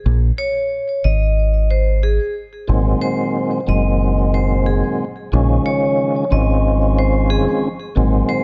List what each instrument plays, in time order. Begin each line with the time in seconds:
0.06 fingered electric bass A#1
0.38 vibraphone C#5
1.04 fingered electric bass G#1, vibraphone D#5
1.70 vibraphone C5
2.03 vibraphone G#4
2.67 fingered electric bass G#1, tonewheel organ A#2 D#3 F#3 G#3 C4
3.02 vibraphone C5
3.67 fingered electric bass F#1, tonewheel organ A#2 D#3 F#3 G#3 C4, vibraphone D#5
4.34 vibraphone C5
4.66 vibraphone G#4
5.32 fingered electric bass A#1, tonewheel organ C#3 D#3 F3 G#3 C#4
5.66 vibraphone C#5
6.30 fingered electric bass G#1, tonewheel organ D#3 F3 G#3 C4 C#4, vibraphone D#5
6.98 vibraphone C5
7.30 vibraphone G#4
7.95 fingered electric bass G#1, tonewheel organ A#2 D#3 F#3 G#3 C4
8.29 vibraphone C5